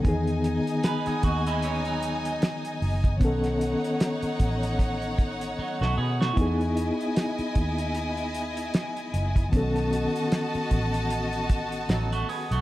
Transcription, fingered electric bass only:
X:1
M:4/4
L:1/16
Q:"Swing 16ths" 1/4=76
K:E
V:1 name="Fingered electric bass" clef=bass
E,,3 z3 D,,6 z2 F,,,2 | B,,,3 z3 A,,,6 z B,,, B,,2 | E,,3 z3 D,,6 z2 F,,,2 | B,,,3 z3 A,,,6 A,,,2 z B,,, |]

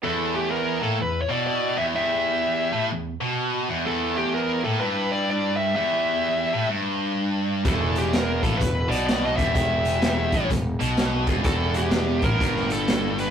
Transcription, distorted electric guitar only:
X:1
M:4/4
L:1/8
Q:"Swing" 1/4=126
K:Em
V:1 name="Distorted electric guitar" clef=bass
E,,3 A,, E,, B,,2 E,, | E,,3 A,, E,, B,,2 E,, | E,,3 A,, G,,4 | E,,3 A,, G,,4 |
E,,3 A,, E,, B,,2 E,, | E,,3 A,, E,, B,,2 E,, | E,,3 A,, G,,4 |]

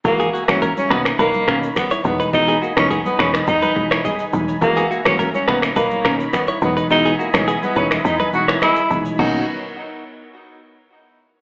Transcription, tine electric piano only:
X:1
M:4/4
L:1/16
Q:1/4=105
K:B
V:1 name="Tine electric piano" clef=bass
[E,G,A,F] z2 [E,G,A,F] z2 [B,,D,A,C] z3 [B,,D,A,C] z3 [B,,E,G,D]2 | [B,,E,G,D] z2 [B,,E,G,D] z2 [B,,E,G,D] z3 [B,,E,G,D] z3 [B,,E,G,D] z | [E,G,A,F] z2 [E,G,A,F] z2 [B,,D,A,C] z3 [B,,D,A,C] z3 [B,,E,G,D]2 | [B,,E,G,D] z2 [B,,E,G,D] z2 [B,,E,G,D] z3 [B,,E,G,D] z3 [B,,E,G,D]2 |
[B,,D,A,C]2 z12 z2 |]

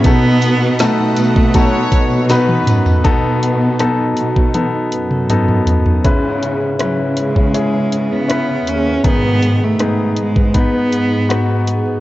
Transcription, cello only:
X:1
M:4/4
L:1/16
Q:1/4=80
K:C#m
V:1 name="Cello"
B,4 A,8 z4 | z16 | z4 F,2 G,4- G, B,3 C2 | B,3 A,3 G,2 B,6 z2 |]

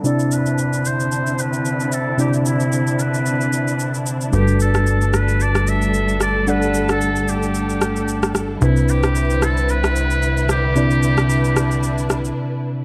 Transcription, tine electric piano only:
X:1
M:4/4
L:1/8
Q:"Swing 16ths" 1/4=112
K:Clyd
V:1 name="Tine electric piano"
[C,CDEd]8 | [C,CDEd]8 | [G,DFAB]8 | [G,DAdf]8 |
[C,CDEB]8 | [C,CDEd]8 |]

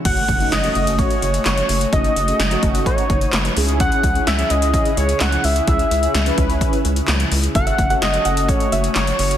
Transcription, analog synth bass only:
X:1
M:4/4
L:1/16
Q:1/4=128
K:F#dor
V:1 name="Analog synth bass" clef=bass
F,,,2 F,,,2 F,,,2 F,,,3 z F,,,2 F,,,2 F,,,2 | F,,,2 F,,,2 F,,,2 F,,,3 z F,,,2 F,,,2 C,,2- | C,,2 C,,2 C,,2 C,,3 z C,,2 C,,2 C,,2 | C,,2 C,,2 C,,2 C,,3 z C,,2 C,,2 C,,2 |
F,,,2 F,,,2 F,,,2 F,,,3 z F,,,2 F,,,2 F,,,2 |]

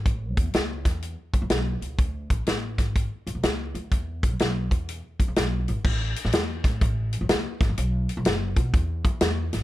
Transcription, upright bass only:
X:1
M:4/4
L:1/16
Q:"Swing" 1/4=124
K:A
V:1 name="Upright bass" clef=bass
A,,,2 E,,2 C,,2 E,,3 z D,, C,, B,,,2 C,,2 | D,,2 A,,,2 A,,,2 G,,,3 z F,,, E,,, C,,2 D,,2 | E,,2 B,,,2 B,,,2 E,,3 z D,, C,, B,,,2 G,,, z | A,,,2 z A,,, z2 A,,2 A,,,3 A,,, C,, z G,,, A,,, |
B,,,2 z B,,, F,,,2 B,,2 E,,2 E,2 E,,2 G,,,2 |]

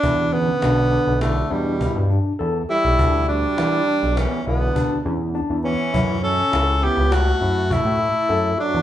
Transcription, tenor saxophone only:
X:1
M:5/4
L:1/8
Q:1/4=102
K:Edor
V:1 name="Tenor saxophone"
D B,3 A, G,2 z2 E- | E D3 C B,2 z2 C- | C A2 G F2 E3 D |]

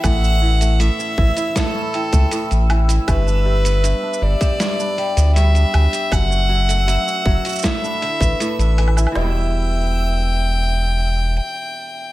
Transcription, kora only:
X:1
M:4/4
L:1/16
Q:1/4=79
K:Edor
V:1 name="Kora" clef=bass
A,, C E, A, A,, C E, E A,, C E, A, A,, C E, E | G,, D G, B, G,, D G, G G,, D G, B, G,, D G, G | F,, C F, A, F,, C F, F A,, D D, A, A,, D D, E | [B,,E,G,B,E]16 |]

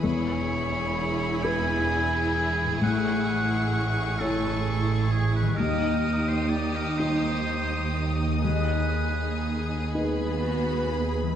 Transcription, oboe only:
X:1
M:6/8
L:1/16
Q:3/8=43
K:E
V:1 name="Oboe"
c6 g6 | f6 A4 G B | ^A3 =c =d A c4- c z | B6 z6 |]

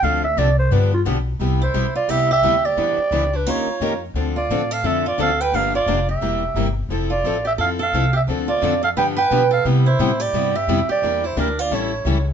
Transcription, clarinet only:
X:1
M:4/4
L:1/8
Q:"Swing" 1/4=175
K:C
V:1 name="Clarinet"
f e d c B F z2 | z c2 d e e2 d- | d3 B _d3 z | z d2 f e d f g |
f d2 e4 z | z d2 e f f2 e | z d2 f g g2 f | z c2 d2 e2 d- |
d c _B d ^c3 z |]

